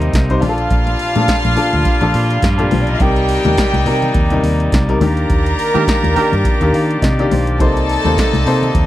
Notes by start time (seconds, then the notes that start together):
Already playing: C3 G3 A#3 C4 D#4 A#4 C5
0.02 closed hi-hat
0.13 C2, kick, snare, closed hi-hat
0.29 C3 G3 D#4 C5, closed hi-hat
0.41 A#1 A#2 F3 G3 A#3 D4 F4 G4 F5, snare, open hi-hat, high conga, low conga
0.49 A4
0.58 closed hi-hat
0.70 A#1, kick, closed hi-hat, muted conga
0.87 closed hi-hat, muted conga
0.99 open hi-hat
1.15 A#2 F3 D4 A4, closed hi-hat, high conga
1.28 kick, snare, closed hi-hat, muted conga
1.45 A#1, closed hi-hat, muted conga, high conga
1.56 A#2 F3 D4 A4, open hi-hat
1.73 D2, closed hi-hat, low conga
1.85 kick, closed hi-hat, muted conga
2.01 A#1 A#2 F3 D4 A4, closed hi-hat, muted conga
2.14 A#2, open hi-hat
2.30 closed hi-hat
2.42 G2, kick, snare, closed hi-hat
2.58 A#2 F3 A3 D4 G4 A4, closed hi-hat
2.66 A#3 A#4
2.71 B1 C4 C5, snare, open hi-hat, high conga, low conga
2.80 D4 D5
2.87 D#4 D#5, closed hi-hat
2.94 F4 F5
3.00 C2 C3 G3 D#4 G4 A#4 D5 G5, kick, closed hi-hat
3.16 closed hi-hat
3.29 open hi-hat
3.44 D#2 C3 G3 D#4 A#4, closed hi-hat, high conga
3.57 kick, snare, closed hi-hat
3.73 C2, closed hi-hat, high conga
3.86 C3 G3 D#4 A#4, open hi-hat
4.02 closed hi-hat, low conga
4.14 D#2, kick, closed hi-hat, muted conga
4.30 C3 G3 D#4 A#4, closed hi-hat
4.43 D#2, open hi-hat
4.60 closed hi-hat
4.72 C2, kick, snare, closed hi-hat
4.88 C3 G3 D#4 A#4, closed hi-hat
5.00 D#2 D#3 A#3 D4 F4 G4 A#4 A#5, snare, open hi-hat, high conga, low conga
5.17 closed hi-hat
5.30 D#2, kick, closed hi-hat
5.46 closed hi-hat
5.59 open hi-hat
5.74 D#3 A#3 D4 D#4 G4 A#4, closed hi-hat, high conga
5.87 kick, snare, closed hi-hat, muted conga
6.03 D#2, closed hi-hat, muted conga, high conga
6.16 D#3 A#3 D4 D#4 G4 A#4, open hi-hat, low conga
6.32 G2, closed hi-hat, low conga
6.45 kick, closed hi-hat
6.61 D#2 D#3 A#3 D4 G4, closed hi-hat
6.74 D#3 F5, open hi-hat
6.91 closed hi-hat
7.02 C3 D#5, kick, snare, closed hi-hat
7.19 D#3 A#3 D4 G4 D5, closed hi-hat
7.31 B1 C5, snare, open hi-hat, high conga, low conga
7.47 closed hi-hat
7.59 C2 C3 G3 A#3 D#4 A4 C5 A5, kick, closed hi-hat, muted conga
7.76 closed hi-hat, muted conga
7.89 open hi-hat
8.05 D#2 C3 A#3 D#4 C5, closed hi-hat, high conga
8.17 kick, snare, closed hi-hat, muted conga
8.33 C2, closed hi-hat, high conga
8.46 C3 A#3 D#4 C5, open hi-hat
8.62 closed hi-hat, low conga
8.75 D#2, kick, closed hi-hat, muted conga